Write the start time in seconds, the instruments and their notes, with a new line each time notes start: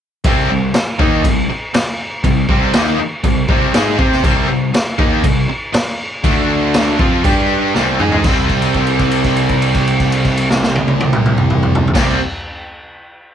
0.24 picked electric bass C2, overdriven electric guitar C3 G3 C4, kick, crash
0.51 picked electric bass C2, overdriven electric guitar C3 G3
0.74 muted distorted electric guitar stroke, muted overdriven electric guitar stroke, muted picked electric bass stroke, snare, crash
0.99 picked electric bass D#2, overdriven electric guitar D#3 A#3 D#4, kick
1.24 picked electric bass C2, overdriven electric guitar C3 G3, kick, crash
1.50 muted distorted electric guitar stroke, muted picked electric bass stroke, muted overdriven electric guitar stroke
1.74 muted picked electric bass stroke, muted overdriven electric guitar stroke, muted distorted electric guitar stroke, snare, crash
2.24 picked electric bass C2, overdriven electric guitar C3 G3, kick, crash
2.48 picked electric bass C2, overdriven electric guitar C3 G3 C4, kick
2.73 picked electric bass D#2, overdriven electric guitar D#3 A#3 D#4, snare, crash
3.00 muted overdriven electric guitar stroke, muted picked electric bass stroke, muted distorted electric guitar stroke
3.24 picked electric bass C2, overdriven electric guitar C3 G3, kick, crash
3.49 picked electric bass C2, overdriven electric guitar C3 G3 C4, kick
3.73 picked electric bass G#2, overdriven electric guitar G#3 D#4 G#4, snare, crash
3.99 picked electric bass C3, overdriven electric guitar C4 G4 C5, kick
4.12 snare
4.23 picked electric bass C2, overdriven electric guitar C3 G3 C4, kick, crash
4.49 picked electric bass C2, overdriven electric guitar C3 G3
4.74 muted distorted electric guitar stroke, muted overdriven electric guitar stroke, muted picked electric bass stroke, snare, crash
4.98 picked electric bass D#2, overdriven electric guitar D#3 A#3 D#4, kick
5.24 picked electric bass C2, overdriven electric guitar C3 G3, kick, crash
5.49 muted distorted electric guitar stroke, muted overdriven electric guitar stroke, muted picked electric bass stroke
5.73 muted distorted electric guitar stroke, muted picked electric bass stroke, muted overdriven electric guitar stroke, snare, crash
6.24 picked electric bass D2, overdriven electric guitar D3 A3 D4, kick, crash
6.74 snare, crash
6.99 picked electric bass F2, overdriven electric guitar F3 C4 F4, kick
7.24 picked electric bass G2, overdriven electric guitar G3 D4 G4, kick, crash
7.75 picked electric bass C2, overdriven electric guitar C3 G3 C4, snare
8.00 picked electric bass G#2, overdriven electric guitar G#3 D#4 G#4, mid tom
8.12 floor tom
8.24 picked electric bass C2, overdriven electric guitar C3 G3 C4, kick, crash
8.49 kick, crash
8.62 crash
8.74 kick, crash
8.87 crash
8.99 kick, crash
9.11 crash
9.24 kick, crash
9.37 crash
9.49 kick, crash
9.62 crash
9.74 kick, crash
9.87 crash
10.00 kick, crash
10.12 crash
10.25 kick, crash
10.37 crash
10.50 snare
10.63 snare
10.75 high tom
10.88 high tom
11.00 high tom
11.13 mid tom
11.26 mid tom
11.38 mid tom
11.50 mid tom
11.63 mid tom
11.75 floor tom
11.88 floor tom
11.95 picked electric bass C2, overdriven electric guitar C3 G3 C4, kick, snare, crash